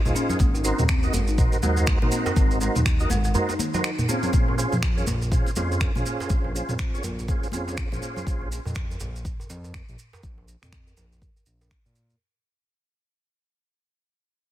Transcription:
0.05 C#2 D#4 F4 G#4 C5, mid tom, muted conga, djembe tone, maracas
0.15 C#4, high conga, maracas
0.29 C#4, djembe tone, low conga, maracas
0.39 G#1 G#3, kick, muted conga, high conga, maracas
0.54 D#4, djembe tone, maracas
0.64 C4 D#4 F#4 A#4 C5, maracas
0.79 D#2, mid tom, muted conga, djembe tone, low conga, maracas
0.89 C4, finger snap, kick, maracas
1.03 D#4 F#4 A#4 D#5, djembe tone, maracas
1.13 G#1 G#3, djembe slap, muted conga, high conga, djembe bass, maracas
1.27 D#4, djembe tone, maracas
1.38 D#4 F#4 A#4 C5, kick, mid tom, maracas
1.52 muted conga, djembe tone, maracas
1.63 D#2 G#3 D#4 F#4 A#4 C5, djembe slap, high conga, low conga, maracas
1.77 G#3, djembe tone, maracas
1.87 finger snap, kick, high conga, djembe bass, maracas
2.02 G#1 D#4 F#4 A#4 C5, mid tom, muted conga, djembe tone, high conga
2.12 C4, high conga, maracas
2.26 djembe slap, djembe tone, maracas
2.36 G#1 C4, kick, muted conga, high conga, maracas
2.51 djembe tone, maracas
2.61 G#3 D#4 F#4 A#4 C5, maracas
2.75 D#2 D#4, mid tom, muted conga, djembe tone, low conga, maracas
2.86 finger snap, kick, maracas
3.00 D#4 F#4 A#4 D#5, djembe tone, maracas
3.10 G#1 G#3, muted conga, djembe slap, high conga, djembe bass, maracas
3.24 G#3, djembe tone, maracas
3.34 G#3 D#4 F#4 A#4 C5, high conga, djembe bass, maracas
3.49 D#4, muted conga, djembe tone, maracas
3.59 D#3, high conga, maracas
3.74 D#4 F#4 A#4 C5, djembe slap, djembe tone, low conga, maracas
3.84 finger snap, maracas
3.99 mid tom, muted conga, djembe tone, maracas
4.09 C4 C#4 F4 G#4 C5, high conga, maracas
4.23 C4, djembe tone, low conga, maracas
4.33 A#1, kick, muted conga, high conga, maracas
4.48 djembe tone
4.58 C#4 F4 G#4 C5, maracas
4.72 F2, mid tom, muted conga, djembe tone, low conga, maracas
4.82 finger snap, kick, maracas
4.97 C#4 F4 G#4 C#5, djembe tone, maracas
5.07 A#1, muted conga, djembe slap, high conga, djembe bass, maracas
5.22 djembe tone, maracas
5.32 C#4 F4 G#4 C5, kick, mid tom, maracas
5.46 muted conga, djembe tone, maracas
5.56 F2 C#4 F4 G#4 C5, djembe slap, high conga, low conga, maracas
5.72 djembe tone, maracas
5.81 finger snap, kick, djembe bass, maracas
5.95 A#1 C#4 F4 G#4 C5, mid tom, muted conga, high conga, djembe tone, maracas
6.06 high conga, maracas
6.20 djembe slap, djembe tone, maracas
6.30 A#1, kick, muted conga, high conga, maracas
6.44 djembe tone
6.55 C#4 F4 G#4 C5, maracas
6.69 F2, mid tom, muted conga, djembe tone, low conga, maracas
6.79 finger snap, kick, maracas
6.94 C#4 F4 G#4 C#5, djembe tone, maracas
7.04 A#1, muted conga, djembe slap, high conga, djembe bass, maracas
7.19 djembe tone, maracas
7.28 C#4 F4 G#4 C5, kick, high conga, djembe bass, maracas
7.43 muted conga, djembe tone, maracas
7.52 F2 C#4 F4 G#4 C5, high conga, maracas
7.68 djembe slap, djembe tone, low conga, maracas
7.77 finger snap, kick, maracas
7.92 A#1 C#4 F4 G#4 C5, mid tom, muted conga, djembe tone, maracas
8.02 high conga, maracas
8.16 djembe tone, low conga, maracas
8.27 A#1, kick, maracas
8.42 djembe tone
8.52 maracas
8.65 F2, mid tom, djembe tone, maracas
8.75 finger snap, kick, maracas
8.91 djembe tone, maracas
9.00 A#1, djembe slap, djembe bass, maracas
9.15 djembe tone, maracas
9.25 kick, mid tom, maracas
9.40 djembe tone, maracas
9.50 F2, djembe slap, maracas
9.64 djembe tone, maracas
9.74 finger snap, kick, djembe bass, maracas
9.89 A#1, mid tom, djembe tone, maracas
9.99 maracas
10.13 djembe slap, djembe tone, maracas
10.23 A#1, kick, maracas
10.38 djembe tone
10.48 maracas
10.62 F2, finger snap, mid tom, djembe tone, maracas
10.73 finger snap, kick, maracas
10.87 djembe tone, maracas
10.97 A#1, djembe slap, djembe bass, maracas
11.12 djembe tone, maracas
11.22 kick, djembe bass, maracas
11.36 djembe tone, maracas
11.46 A#1, maracas
11.61 djembe slap, djembe tone, maracas
11.71 finger snap, kick, maracas
11.85 A#2, mid tom, djembe tone, maracas
11.96 maracas
12.10 djembe tone, maracas

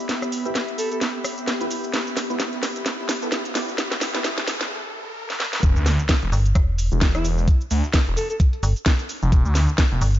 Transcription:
Already playing: B3 G4 E5 B5, riser
0.09 snare, closed hi-hat, shaker
0.22 cross-stick, shaker
0.32 open hi-hat, shaker
0.45 B3 E4 G4 E5, closed hi-hat, shaker
0.55 snare, closed hi-hat, shaker
0.68 closed hi-hat
0.78 A4, open hi-hat, shaker
0.91 A4, closed hi-hat, shaker
1.01 snare, closed hi-hat, shaker
1.24 cross-stick, open hi-hat, shaker
1.38 closed hi-hat, shaker
1.48 snare, closed hi-hat, shaker
1.61 B3 E4 G4 B4, closed hi-hat, shaker
1.71 open hi-hat, shaker
1.84 shaker
1.94 snare, closed hi-hat, shaker
2.07 shaker
2.17 snare, open hi-hat, shaker
2.30 B3 E4 G4 B4, closed hi-hat, shaker
2.40 snare, closed hi-hat, shaker
2.53 closed hi-hat
2.63 snare, open hi-hat, shaker
2.76 closed hi-hat, shaker
2.86 snare, closed hi-hat, shaker
3.09 snare, open hi-hat, shaker
3.22 B3 E4 G4 A4, closed hi-hat, shaker
3.32 snare, closed hi-hat, shaker
3.45 closed hi-hat, shaker
3.55 B3 E4 G4 D5, snare, open hi-hat, shaker
3.69 shaker
3.78 snare, closed hi-hat, shaker
3.92 snare, shaker
4.01 snare, open hi-hat, shaker
4.15 B3 E4 G4 E5, snare, closed hi-hat, shaker
4.25 snare, closed hi-hat, shaker
4.38 snare, closed hi-hat
4.48 snare, open hi-hat, shaker
4.61 snare, closed hi-hat, shaker
5.30 snare
5.40 snare
5.53 snare
5.63 E1, kick, closed hi-hat, sub drop, shaker
5.76 D2, shaker
5.86 snare, closed hi-hat, open hi-hat, shaker
5.99 closed hi-hat, shaker
6.09 kick, snare, closed hi-hat, shaker
6.22 E1, closed hi-hat
6.32 G1, closed hi-hat, open hi-hat, shaker
6.46 closed hi-hat, shaker
6.55 E1, kick, cross-stick, closed hi-hat, shaker
6.78 closed hi-hat, open hi-hat, shaker
6.92 E1, closed hi-hat, shaker
7.01 kick, snare, closed hi-hat, shaker
7.15 E1 E4, cross-stick, closed hi-hat, shaker
7.25 closed hi-hat, open hi-hat, shaker
7.38 shaker
7.48 kick, closed hi-hat, shaker
7.61 shaker
7.71 D2, closed hi-hat, open hi-hat, shaker
7.84 snare, closed hi-hat, shaker
7.94 kick, snare, closed hi-hat, shaker
8.07 E1, closed hi-hat
8.17 A4, closed hi-hat, open hi-hat, shaker
8.30 A4, closed hi-hat, shaker
8.40 kick, closed hi-hat, shaker
8.53 closed hi-hat
8.63 G1, closed hi-hat, open hi-hat, shaker
8.76 closed hi-hat, shaker
8.86 kick, snare, closed hi-hat, shaker
8.99 snare, closed hi-hat, shaker
9.09 closed hi-hat, open hi-hat, shaker
9.22 F1, shaker
9.32 E1, kick, closed hi-hat, shaker
9.45 D2, shaker
9.55 snare, closed hi-hat, open hi-hat, shaker
9.69 shaker
9.78 kick, snare, closed hi-hat, shaker
9.91 E1, closed hi-hat
10.01 G1, closed hi-hat, open hi-hat, shaker
10.15 closed hi-hat, shaker

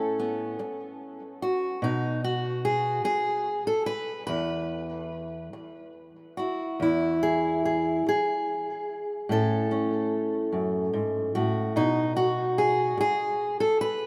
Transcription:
Already playing: A2 C#4 A4
0.20 B3
0.59 muted steel-string acoustic guitar stroke
1.42 F#4
1.82 B2 D#4
2.24 F#4
2.65 G#4
3.04 G#4, muted steel-string acoustic guitar stroke
3.67 A4
3.86 B4
4.27 E2 B4
5.53 muted steel-string acoustic guitar stroke
6.37 E4 F#4
6.80 E2 E4
7.23 G#4
7.65 G#4
8.07 G#4, muted steel-string acoustic guitar stroke
9.29 A2 C#4 A4
9.71 C#4
10.52 F#2
10.93 G#2
11.35 A2 F#4
11.76 B2 D#4
12.16 F#4
12.58 G#4
12.97 G#4, muted steel-string acoustic guitar stroke
13.60 A4
13.81 B4

